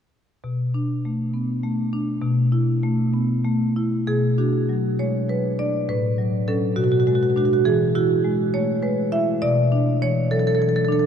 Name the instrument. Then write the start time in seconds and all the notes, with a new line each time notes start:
marimba
0.44 B2
0.74 D4
1.05 A3
1.34 B3
1.63 A3
1.93 D4
2.22 B2
2.52 E4
2.83 A3
3.14 B3
3.45 A3
3.76 E4
4.07 B2 G#4
4.38 D4 F#4
4.69 F#3
4.99 G#3 C#5
5.29 F#3 B4
5.59 D4 D5
5.89 A2 B4
6.18 F#3
6.48 F#3 C#4 A4
6.76 B2 F#4
6.84 F#4
6.92 F#4
7.00 F#4
7.07 G#3 F#4
7.15 F#4
7.23 F#4
7.30 F#4
7.36 G#3 D4 F#4
7.45 F#4
7.53 F#4
7.65 E3 G#4
7.95 E4 F#4
8.25 G#3
8.54 A3 C#5
8.83 G#3 B4
9.12 E4 E5
9.42 B2 D5
9.72 D4
10.02 E3 C#5
10.31 F#3 A4
10.39 A4
10.47 A4
10.55 A4
10.59 E3 A4
10.69 A4
10.76 A4
10.85 D4 A4
10.92 A4
10.99 A4